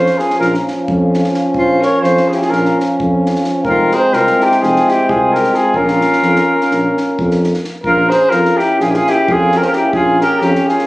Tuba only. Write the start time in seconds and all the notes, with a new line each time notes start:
0.40 A#1
0.89 F2
1.54 A#1
2.03 F2
2.51 A#1
3.00 F2
3.64 F1
4.12 C2
4.61 F1
5.10 C2
5.74 A#1
6.23 F2
6.71 A#1
7.20 F2
7.84 A#1
8.32 F2
8.81 A#1
9.28 F2
9.94 A#1
10.41 F2